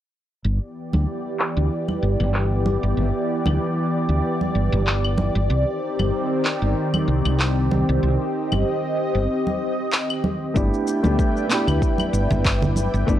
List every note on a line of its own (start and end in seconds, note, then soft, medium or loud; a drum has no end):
0.44 0.58 G1 medium
0.44 5.46 E3 medium
0.44 5.46 B3 medium
0.44 5.46 G4 medium
0.44 7.99 D5 medium
0.93 1.05 D2 medium
0.93 high conga medium
0.93 claves medium
1.39 clap medium
1.57 1.68 D2 medium
1.88 high conga medium
1.88 claves medium
2.03 2.16 G1 medium
2.20 2.76 G1 medium
2.20 claves medium
2.34 clap medium
2.66 high conga medium
2.83 2.94 G1 medium
2.97 3.10 G1 medium
3.46 3.57 D2 medium
3.46 high conga medium
3.46 claves medium
4.09 4.20 D2 medium
4.41 high conga medium
4.55 4.68 G1 medium
4.72 5.29 G1 medium
4.87 clap medium
5.04 claves medium
5.18 high conga medium
5.35 5.46 G1 medium
5.48 5.63 C2 medium
5.48 10.51 D#3 medium
5.48 10.50 C4 medium
5.48 10.51 G4 medium
5.99 6.10 G1 medium
5.99 high conga medium
5.99 claves medium
6.45 clap medium
6.62 6.73 G1 medium
6.94 high conga medium
6.94 claves medium
7.08 7.21 C2 medium
7.25 7.82 C2 medium
7.25 claves medium
7.40 clap medium
7.71 high conga medium
7.89 7.99 C2 medium
8.02 8.16 C2 medium
8.02 10.53 D#5 medium
8.52 8.63 G1 medium
8.52 high conga medium
8.52 claves medium
9.15 9.25 G1 medium
9.47 high conga medium
9.92 clap medium
10.10 claves medium
10.24 high conga medium
10.54 10.69 G1 medium
10.54 11.00 A3 medium
10.54 11.00 B3 medium
10.54 11.00 D4 medium
10.54 13.20 E4 medium
10.54 11.01 E4 medium
10.54 11.01 G4 loud
10.54 13.20 B4 medium
10.54 13.20 D5 medium
10.54 13.20 G5 medium
10.54 kick medium
10.54 shaker soft
10.74 shaker soft
10.87 shaker medium
11.03 11.15 D2 medium
11.03 11.46 A3 medium
11.03 11.47 B3 medium
11.03 11.47 D4 medium
11.03 11.47 E4 medium
11.03 11.48 G4 medium
11.03 high conga medium
11.03 shaker soft
11.19 kick medium
11.19 shaker soft
11.37 shaker soft
11.47 13.03 A3 medium
11.47 13.04 B3 medium
11.47 13.05 D4 medium
11.47 clap medium
11.47 shaker medium
11.52 13.06 E4 medium
11.52 13.07 G4 medium
11.67 11.78 D2 medium
11.67 low conga medium
11.67 claves medium
11.67 shaker soft
11.82 kick medium
11.82 shaker soft
11.98 high conga medium
11.98 claves medium
11.98 shaker soft
12.13 12.26 G1 medium
12.13 shaker medium
12.31 12.87 G1 loud
12.31 low conga medium
12.31 shaker soft
12.45 kick loud
12.45 clap medium
12.45 shaker soft
12.62 low conga loud
12.62 shaker soft
12.76 high conga medium
12.76 shaker medium
12.94 13.05 G1 medium
12.94 shaker soft
13.07 13.20 G1 medium
13.07 13.20 A3 medium
13.07 13.20 B3 medium
13.07 13.20 D4 medium
13.07 13.20 E4 medium
13.07 13.20 G4 medium
13.07 kick loud
13.07 shaker soft